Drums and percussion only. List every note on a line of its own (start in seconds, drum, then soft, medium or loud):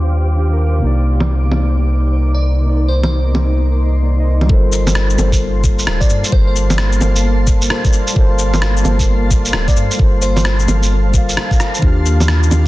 1.20 low bongo medium
1.52 low bongo medium
3.04 low bongo medium
3.35 low bongo medium
4.41 low bongo soft
4.49 kick loud
4.72 cabasa medium
4.87 low bongo medium
4.87 shaker medium
4.95 cross-stick loud
5.10 cabasa soft
5.18 low bongo medium
5.18 cabasa medium
5.32 kick medium
5.32 shaker medium
5.64 kick loud
5.64 cabasa medium
5.79 shaker medium
5.87 cross-stick loud
6.01 kick loud
6.01 shaker soft
6.10 cabasa medium
6.24 shaker medium
6.32 kick loud
6.56 cabasa medium
6.70 low bongo medium
6.70 shaker medium
6.78 cross-stick loud
6.93 cabasa soft
7.01 low bongo medium
7.01 cabasa medium
7.16 shaker medium
7.47 kick loud
7.47 cabasa medium
7.62 shaker medium
7.70 cross-stick loud
7.85 kick loud
7.85 shaker soft
7.93 cabasa medium
8.07 shaker medium
8.16 kick loud
8.39 cabasa medium
8.54 low bongo medium
8.54 shaker medium
8.62 cross-stick loud
8.77 cabasa soft
8.85 low bongo medium
8.85 cabasa medium
8.99 kick medium
8.99 shaker medium
9.31 kick loud
9.31 cabasa medium
9.45 shaker medium
9.53 cross-stick loud
9.68 kick loud
9.68 shaker soft
9.76 cabasa medium
9.91 shaker medium
9.99 kick loud
10.22 cabasa medium
10.37 low bongo medium
10.37 shaker medium
10.45 cross-stick loud
10.59 cabasa soft
10.68 low bongo medium
10.68 cabasa medium
10.83 shaker medium
11.14 kick loud
11.14 cabasa medium
11.29 shaker medium
11.37 cross-stick loud
11.51 kick loud
11.51 shaker soft
11.60 cross-stick medium
11.60 cabasa medium
11.74 shaker medium
11.82 kick loud
12.06 cabasa medium
12.20 low bongo medium
12.20 shaker medium
12.28 cross-stick loud
12.43 cabasa soft
12.51 low bongo medium
12.51 cabasa medium